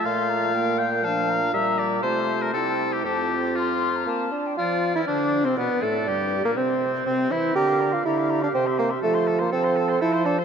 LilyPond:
<<
  \new Staff \with { instrumentName = "Flute" } { \time 3/4 \key f \major \tempo 4 = 121 c'''8 bes''8 g''8 f''8 a''8 bes''8 | bes''4 a''4 g''4 | a''4 c'''8. bes''16 a''8. g''16 | f'8. e'16 d'8. c'16 b'8 a'8 |
g'8. bes'16 c'4 c'8 e'8 | bes''16 d'''16 bes''16 d'''16 bes''16 d'''16 bes''16 d'''16 g''16 c'''16 g''16 c'''16 | a''16 c'''16 a''16 c'''16 a''16 c'''16 a''16 c'''16 a''16 c'''16 a''16 c'''16 | }
  \new Staff \with { instrumentName = "Oboe" } { \time 3/4 \key f \major f''4. g''8 f''4 | e''8 d''8 c''8. bes'16 a'8. g'16 | g'4 f'4. r8 | f'8. e'16 d'8. c'16 b8 a'8 |
g'8. bes16 c'4 c'8 e'8 | d''16 f''16 d''16 f''16 d''16 f''16 d''16 f''16 c''16 e''16 c''16 e''16 | a'16 c''16 a'16 c''16 a'16 c''16 a'16 c''16 a'16 c''16 a'16 c''16 | }
  \new Staff \with { instrumentName = "Clarinet" } { \time 3/4 \key f \major f'2 d'4 | g'4 f'4 e'4 | f'2~ f'8 r8 | d''4 c''4 d''4~ |
d''4 c''2 | bes'4 g'2 | f'4 a'4 c''4 | }
  \new Staff \with { instrumentName = "Bassoon" } { \time 3/4 \key f \major bes,2. | bes,4 c4 c4 | f,2 bes8 d'8 | f'8. e'16 d'8. c'16 b8 a8 |
g8. bes16 c'4 c'8 e'8 | g'8. f'16 e'8. d'16 c'8 bes8 | a8. bes16 c'4 e'8 d'8 | }
  \new Staff \with { instrumentName = "French horn" } { \clef bass \time 3/4 \key f \major a4 bes4 f4 | g4 a4 c'4 | c'2~ c'8 r8 | f8. e16 d8. c16 b,8 a,8 |
g,8. bes,16 c4 c8 e8 | d4 d4 c4 | f4 f4 f4 | }
>>